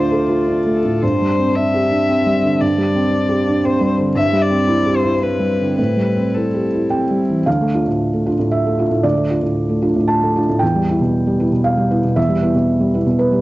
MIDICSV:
0, 0, Header, 1, 4, 480
1, 0, Start_track
1, 0, Tempo, 534283
1, 916, Time_signature, 3, 2, 24, 8
1, 2344, Tempo, 519931
1, 4264, Tempo, 555556
1, 6664, Tempo, 520833
1, 12144, End_track
2, 0, Start_track
2, 0, Title_t, "Violin"
2, 0, Program_c, 0, 40
2, 0, Note_on_c, 0, 72, 71
2, 434, Note_off_c, 0, 72, 0
2, 678, Note_on_c, 0, 69, 52
2, 924, Note_on_c, 0, 72, 67
2, 937, Note_off_c, 0, 69, 0
2, 1396, Note_on_c, 0, 76, 77
2, 1409, Note_off_c, 0, 72, 0
2, 2345, Note_on_c, 0, 74, 67
2, 2359, Note_off_c, 0, 76, 0
2, 3309, Note_on_c, 0, 72, 65
2, 3323, Note_off_c, 0, 74, 0
2, 3546, Note_off_c, 0, 72, 0
2, 3780, Note_on_c, 0, 76, 79
2, 4013, Note_on_c, 0, 74, 85
2, 4027, Note_off_c, 0, 76, 0
2, 4499, Note_on_c, 0, 72, 78
2, 4512, Note_off_c, 0, 74, 0
2, 4732, Note_on_c, 0, 71, 70
2, 4745, Note_off_c, 0, 72, 0
2, 5199, Note_off_c, 0, 71, 0
2, 5204, Note_on_c, 0, 71, 58
2, 5695, Note_on_c, 0, 69, 45
2, 5708, Note_off_c, 0, 71, 0
2, 6183, Note_off_c, 0, 69, 0
2, 12144, End_track
3, 0, Start_track
3, 0, Title_t, "Harmonium"
3, 0, Program_c, 1, 20
3, 0, Note_on_c, 1, 57, 53
3, 0, Note_on_c, 1, 65, 62
3, 0, Note_on_c, 1, 74, 63
3, 882, Note_off_c, 1, 57, 0
3, 918, Note_off_c, 1, 65, 0
3, 918, Note_off_c, 1, 74, 0
3, 921, Note_on_c, 1, 62, 44
3, 923, Note_on_c, 1, 60, 40
3, 929, Note_on_c, 1, 55, 39
3, 3784, Note_off_c, 1, 62, 0
3, 3785, Note_on_c, 1, 64, 44
3, 6665, Note_off_c, 1, 64, 0
3, 6667, Note_off_c, 1, 60, 0
3, 6670, Note_off_c, 1, 55, 0
3, 12144, End_track
4, 0, Start_track
4, 0, Title_t, "Felt piano"
4, 0, Program_c, 2, 0
4, 0, Control_c, 2, 64, 127
4, 0, Note_on_c, 2, 38, 49
4, 0, Note_on_c, 2, 57, 39
4, 0, Note_on_c, 2, 62, 38
4, 0, Note_on_c, 2, 65, 40
4, 106, Note_on_c, 2, 69, 34
4, 202, Note_off_c, 2, 65, 0
4, 264, Note_on_c, 2, 65, 32
4, 365, Note_off_c, 2, 69, 0
4, 428, Note_off_c, 2, 62, 0
4, 428, Note_on_c, 2, 62, 34
4, 525, Note_off_c, 2, 65, 0
4, 595, Note_off_c, 2, 57, 0
4, 595, Note_on_c, 2, 57, 29
4, 689, Note_off_c, 2, 62, 0
4, 762, Note_on_c, 2, 45, 30
4, 853, Note_off_c, 2, 57, 0
4, 878, Note_off_c, 2, 38, 0
4, 920, Note_off_c, 2, 45, 0
4, 922, Note_on_c, 2, 43, 42
4, 935, Control_c, 2, 64, 0
4, 1093, Note_on_c, 2, 55, 37
4, 1097, Control_c, 2, 64, 127
4, 1250, Note_on_c, 2, 60, 34
4, 1341, Note_off_c, 2, 55, 0
4, 1397, Note_on_c, 2, 62, 41
4, 1497, Note_off_c, 2, 60, 0
4, 1563, Note_on_c, 2, 67, 37
4, 1648, Note_off_c, 2, 62, 0
4, 1711, Note_on_c, 2, 62, 36
4, 1809, Note_off_c, 2, 67, 0
4, 1878, Note_on_c, 2, 60, 38
4, 1963, Note_off_c, 2, 62, 0
4, 2033, Note_on_c, 2, 55, 34
4, 2127, Note_off_c, 2, 60, 0
4, 2186, Note_on_c, 2, 50, 33
4, 2284, Note_off_c, 2, 55, 0
4, 2311, Note_off_c, 2, 43, 0
4, 2350, Note_on_c, 2, 43, 46
4, 2364, Control_c, 2, 64, 0
4, 2443, Note_off_c, 2, 50, 0
4, 2502, Note_on_c, 2, 55, 41
4, 2505, Control_c, 2, 64, 127
4, 2662, Note_on_c, 2, 60, 40
4, 2762, Note_off_c, 2, 55, 0
4, 2813, Note_on_c, 2, 62, 40
4, 2921, Note_off_c, 2, 60, 0
4, 2974, Note_on_c, 2, 67, 42
4, 3076, Note_off_c, 2, 62, 0
4, 3138, Note_on_c, 2, 62, 44
4, 3236, Note_off_c, 2, 67, 0
4, 3296, Note_on_c, 2, 60, 42
4, 3397, Note_off_c, 2, 62, 0
4, 3450, Note_on_c, 2, 55, 43
4, 3555, Note_off_c, 2, 60, 0
4, 3612, Note_on_c, 2, 50, 41
4, 3711, Note_off_c, 2, 55, 0
4, 3748, Note_off_c, 2, 43, 0
4, 3769, Note_on_c, 2, 43, 56
4, 3776, Note_off_c, 2, 50, 0
4, 3800, Control_c, 2, 64, 0
4, 3923, Control_c, 2, 64, 127
4, 3931, Note_on_c, 2, 55, 45
4, 4091, Note_on_c, 2, 60, 45
4, 4194, Note_off_c, 2, 55, 0
4, 4251, Note_on_c, 2, 64, 50
4, 4351, Note_off_c, 2, 60, 0
4, 4404, Note_on_c, 2, 67, 40
4, 4504, Note_off_c, 2, 64, 0
4, 4557, Note_on_c, 2, 64, 46
4, 4659, Note_off_c, 2, 67, 0
4, 4724, Note_on_c, 2, 60, 39
4, 4816, Note_off_c, 2, 64, 0
4, 4873, Note_on_c, 2, 55, 31
4, 4981, Note_off_c, 2, 60, 0
4, 5048, Note_on_c, 2, 50, 31
4, 5137, Note_off_c, 2, 55, 0
4, 5168, Note_off_c, 2, 43, 0
4, 5209, Note_off_c, 2, 50, 0
4, 5209, Note_on_c, 2, 45, 37
4, 5225, Control_c, 2, 64, 0
4, 5367, Note_on_c, 2, 55, 30
4, 5368, Control_c, 2, 64, 127
4, 5540, Note_on_c, 2, 60, 33
4, 5629, Note_off_c, 2, 55, 0
4, 5706, Note_on_c, 2, 64, 30
4, 5797, Note_off_c, 2, 60, 0
4, 5865, Note_on_c, 2, 67, 28
4, 5961, Note_off_c, 2, 64, 0
4, 6032, Note_on_c, 2, 64, 27
4, 6122, Note_off_c, 2, 67, 0
4, 6177, Note_on_c, 2, 79, 45
4, 6190, Note_on_c, 2, 60, 26
4, 6286, Note_off_c, 2, 64, 0
4, 6353, Note_on_c, 2, 55, 24
4, 6446, Note_off_c, 2, 60, 0
4, 6511, Note_on_c, 2, 52, 25
4, 6605, Note_off_c, 2, 55, 0
4, 6627, Note_off_c, 2, 79, 0
4, 6629, Note_off_c, 2, 45, 0
4, 6660, Note_on_c, 2, 77, 51
4, 6664, Note_on_c, 2, 38, 41
4, 6666, Note_off_c, 2, 52, 0
4, 6680, Control_c, 2, 64, 0
4, 6798, Note_on_c, 2, 57, 35
4, 6841, Control_c, 2, 64, 127
4, 6915, Note_on_c, 2, 62, 30
4, 6921, Note_on_c, 2, 65, 35
4, 6987, Note_off_c, 2, 57, 0
4, 7021, Note_off_c, 2, 62, 0
4, 7024, Note_off_c, 2, 65, 0
4, 7039, Note_on_c, 2, 45, 32
4, 7280, Note_on_c, 2, 57, 28
4, 7396, Note_on_c, 2, 62, 31
4, 7399, Note_on_c, 2, 65, 34
4, 7418, Note_off_c, 2, 45, 0
4, 7466, Note_off_c, 2, 57, 0
4, 7501, Note_off_c, 2, 62, 0
4, 7502, Note_off_c, 2, 65, 0
4, 7518, Note_on_c, 2, 45, 34
4, 7591, Note_off_c, 2, 77, 0
4, 7630, Note_on_c, 2, 76, 52
4, 7765, Note_on_c, 2, 57, 33
4, 7881, Note_on_c, 2, 62, 31
4, 7889, Note_on_c, 2, 65, 35
4, 7901, Note_off_c, 2, 45, 0
4, 7951, Note_off_c, 2, 57, 0
4, 7985, Note_off_c, 2, 62, 0
4, 7990, Note_off_c, 2, 65, 0
4, 7995, Note_on_c, 2, 45, 34
4, 8076, Note_off_c, 2, 38, 0
4, 8079, Note_off_c, 2, 76, 0
4, 8108, Note_on_c, 2, 74, 58
4, 8111, Note_on_c, 2, 38, 39
4, 8130, Control_c, 2, 64, 0
4, 8186, Note_off_c, 2, 45, 0
4, 8234, Note_on_c, 2, 57, 35
4, 8281, Control_c, 2, 64, 127
4, 8356, Note_on_c, 2, 62, 32
4, 8357, Note_on_c, 2, 65, 36
4, 8425, Note_off_c, 2, 57, 0
4, 8463, Note_off_c, 2, 62, 0
4, 8463, Note_off_c, 2, 65, 0
4, 8468, Note_on_c, 2, 45, 33
4, 8715, Note_on_c, 2, 57, 30
4, 8831, Note_on_c, 2, 62, 34
4, 8837, Note_on_c, 2, 65, 34
4, 8858, Note_off_c, 2, 45, 0
4, 8909, Note_off_c, 2, 57, 0
4, 8943, Note_off_c, 2, 62, 0
4, 8946, Note_off_c, 2, 65, 0
4, 8958, Note_on_c, 2, 45, 36
4, 9041, Note_off_c, 2, 74, 0
4, 9069, Note_on_c, 2, 81, 56
4, 9209, Note_on_c, 2, 57, 30
4, 9330, Note_on_c, 2, 62, 33
4, 9339, Note_on_c, 2, 65, 36
4, 9347, Note_off_c, 2, 45, 0
4, 9399, Note_off_c, 2, 57, 0
4, 9435, Note_off_c, 2, 62, 0
4, 9440, Note_off_c, 2, 65, 0
4, 9452, Note_on_c, 2, 45, 32
4, 9524, Note_off_c, 2, 81, 0
4, 9526, Note_off_c, 2, 38, 0
4, 9544, Note_on_c, 2, 79, 58
4, 9568, Note_off_c, 2, 45, 0
4, 9575, Note_on_c, 2, 40, 42
4, 9583, Control_c, 2, 64, 0
4, 9692, Note_on_c, 2, 55, 36
4, 9739, Control_c, 2, 64, 127
4, 9820, Note_on_c, 2, 59, 37
4, 9822, Note_on_c, 2, 64, 38
4, 9879, Note_off_c, 2, 55, 0
4, 9920, Note_off_c, 2, 59, 0
4, 9921, Note_off_c, 2, 64, 0
4, 9930, Note_on_c, 2, 47, 37
4, 10169, Note_on_c, 2, 55, 36
4, 10285, Note_on_c, 2, 59, 35
4, 10290, Note_on_c, 2, 64, 38
4, 10309, Note_off_c, 2, 47, 0
4, 10357, Note_off_c, 2, 55, 0
4, 10391, Note_off_c, 2, 59, 0
4, 10393, Note_off_c, 2, 64, 0
4, 10400, Note_on_c, 2, 47, 36
4, 10474, Note_off_c, 2, 79, 0
4, 10512, Note_on_c, 2, 77, 57
4, 10633, Note_on_c, 2, 55, 33
4, 10755, Note_on_c, 2, 59, 36
4, 10762, Note_on_c, 2, 64, 39
4, 10782, Note_off_c, 2, 47, 0
4, 10827, Note_off_c, 2, 55, 0
4, 10864, Note_off_c, 2, 59, 0
4, 10868, Note_off_c, 2, 64, 0
4, 10878, Note_on_c, 2, 47, 37
4, 10959, Note_off_c, 2, 77, 0
4, 10966, Note_off_c, 2, 40, 0
4, 10989, Note_on_c, 2, 40, 44
4, 10990, Note_on_c, 2, 76, 65
4, 11012, Control_c, 2, 64, 0
4, 11068, Note_off_c, 2, 47, 0
4, 11110, Note_on_c, 2, 55, 40
4, 11148, Control_c, 2, 64, 127
4, 11229, Note_on_c, 2, 59, 40
4, 11236, Note_on_c, 2, 64, 38
4, 11303, Note_off_c, 2, 55, 0
4, 11339, Note_off_c, 2, 59, 0
4, 11343, Note_off_c, 2, 64, 0
4, 11345, Note_on_c, 2, 47, 39
4, 11582, Note_on_c, 2, 55, 36
4, 11708, Note_on_c, 2, 59, 38
4, 11713, Note_on_c, 2, 64, 36
4, 11730, Note_off_c, 2, 47, 0
4, 11777, Note_off_c, 2, 55, 0
4, 11816, Note_off_c, 2, 59, 0
4, 11818, Note_off_c, 2, 64, 0
4, 11821, Note_on_c, 2, 47, 39
4, 11907, Note_off_c, 2, 76, 0
4, 11937, Note_on_c, 2, 71, 55
4, 12058, Note_on_c, 2, 55, 37
4, 12144, Note_off_c, 2, 40, 0
4, 12144, Note_off_c, 2, 47, 0
4, 12144, Note_off_c, 2, 55, 0
4, 12144, Note_off_c, 2, 71, 0
4, 12144, End_track
0, 0, End_of_file